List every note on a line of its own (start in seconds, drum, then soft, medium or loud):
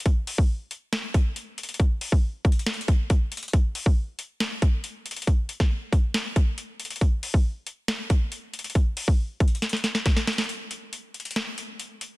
0.00 closed hi-hat medium
0.06 kick loud
0.06 closed hi-hat medium
0.27 open hi-hat medium
0.38 kick loud
0.71 closed hi-hat medium
0.93 snare loud
0.93 closed hi-hat medium
1.14 kick loud
1.14 closed hi-hat medium
1.36 closed hi-hat medium
1.58 closed hi-hat medium
1.63 closed hi-hat medium
1.69 closed hi-hat medium
1.74 closed hi-hat medium
1.80 kick loud
1.80 closed hi-hat medium
2.01 open hi-hat medium
2.12 kick loud
2.45 kick loud
2.45 closed hi-hat soft
2.52 closed hi-hat medium
2.59 closed hi-hat medium
2.66 snare loud
2.66 closed hi-hat medium
2.74 closed hi-hat medium
2.81 closed hi-hat medium
2.88 kick loud
2.88 closed hi-hat medium
3.10 kick loud
3.10 closed hi-hat medium
3.32 closed hi-hat medium
3.37 closed hi-hat medium
3.43 closed hi-hat medium
3.48 closed hi-hat soft
3.53 kick loud
3.53 closed hi-hat medium
3.75 open hi-hat medium
3.86 kick loud
4.19 closed hi-hat medium
4.40 snare loud
4.40 closed hi-hat medium
4.62 kick loud
4.62 closed hi-hat medium
4.84 closed hi-hat medium
5.06 closed hi-hat medium
5.11 closed hi-hat medium
5.17 closed hi-hat medium
5.22 closed hi-hat medium
5.27 kick loud
5.27 closed hi-hat medium
5.49 closed hi-hat medium
5.60 kick loud
5.60 snare medium
5.93 kick loud
5.93 closed hi-hat medium
6.14 snare loud
6.14 closed hi-hat medium
6.36 kick loud
6.36 closed hi-hat medium
6.58 closed hi-hat medium
6.80 closed hi-hat medium
6.85 closed hi-hat medium
6.90 closed hi-hat medium
6.96 closed hi-hat medium
7.01 kick loud
7.01 closed hi-hat medium
7.23 open hi-hat medium
7.34 kick loud
7.67 closed hi-hat medium
7.88 snare loud
7.88 closed hi-hat medium
8.10 kick loud
8.10 closed hi-hat medium
8.32 closed hi-hat medium
8.54 closed hi-hat medium
8.59 closed hi-hat medium
8.64 closed hi-hat medium
8.70 closed hi-hat medium
8.75 kick loud
8.75 closed hi-hat medium
8.97 open hi-hat medium
9.08 kick loud
9.40 kick loud
9.40 closed hi-hat soft
9.48 closed hi-hat medium
9.55 closed hi-hat medium
9.62 snare medium
9.62 closed hi-hat medium
9.69 snare medium
9.69 closed hi-hat medium
9.77 closed hi-hat medium
9.84 snare medium
9.84 closed hi-hat medium
9.95 snare medium
10.06 kick loud
10.06 snare loud
10.06 closed hi-hat medium
10.17 snare medium
10.27 snare loud
10.27 closed hi-hat medium
10.33 closed hi-hat medium
10.38 snare loud
10.38 closed hi-hat medium
10.44 closed hi-hat soft
10.49 closed hi-hat medium
10.71 closed hi-hat medium
10.93 closed hi-hat medium
11.14 closed hi-hat soft
11.20 closed hi-hat medium
11.25 closed hi-hat medium
11.31 closed hi-hat medium
11.36 snare loud
11.36 closed hi-hat medium
11.58 closed hi-hat medium
11.80 closed hi-hat medium
12.01 closed hi-hat medium